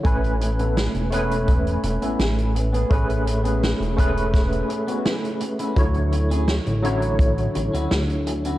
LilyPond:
<<
  \new Staff \with { instrumentName = "Tine electric piano" } { \time 4/4 \key a \major \tempo 4 = 84 <a cis' b' gis''>4. <a cis' b' gis''>2~ <a cis' b' gis''>8 | <a cis' gis' b'>4. <a cis' gis' b'>2~ <a cis' gis' b'>8 | <d fis e' cis''>4. <d fis e' cis''>2~ <d fis e' cis''>8 | }
  \new Staff \with { instrumentName = "Clean electric guitar" } { \time 4/4 \key a \major r8. <b cis' a'>16 r8 <b cis' gis'>16 r4 <b cis' e'>16 r8. <b cis' gis'>16 | r8. <b cis' gis'>16 r8 <b cis' gis'>16 r4 <b cis' fis'>16 r8. <b cis' e'>16 | r8. <cis' e' gis'>16 r8 <cis' e' fis'>16 r4 <cis' e' fis'>16 r8. <cis' e' fis'>16 | }
  \new Staff \with { instrumentName = "Analog synth bass" } { \clef bass \time 4/4 \key a \major a,,4~ a,,16 e,,4~ e,,16 e,,16 a,,16 a,,4 | a,,4~ a,,16 e,,4~ e,,16 r4. | d,4~ d,16 a,,4~ a,,16 a,,16 d,16 d,4 | }
  \new DrumStaff \with { instrumentName = "Drums" } \drummode { \time 4/4 <hh bd>16 hh16 hh16 hh16 <hh sn>16 hh16 hh16 hh16 <hh bd>16 hh16 hh16 hh16 <hh sn>16 hh16 hh16 hh16 | <hh bd>16 hh16 hh16 hh16 <hh sn>16 hh16 <hh bd>16 hh16 <hh bd sn>16 hh16 hh16 hh16 <hh sn>16 hh16 hh16 hh16 | <hh bd>16 hh16 hh16 hh16 <hh sn>16 hh16 hh16 hh16 <hh bd>16 hh16 hh16 hh16 <hh sn>16 hh16 hh16 hh16 | }
>>